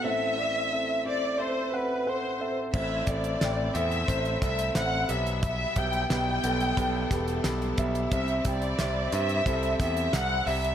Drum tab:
CC |----------------|x---------------|----------------|----------------|
HH |----------------|--xxx-xxxxxxx-xx|x-xxx-xxx-xxxxxx|xxxxx-xxxxxxx-ox|
SD |----------------|----o-----o-o---|----o-----o-o---|----o-----o-o---|
BD |----------------|o-o-----o-o-----|o-o-----o-o---o-|o-o-----o-o-----|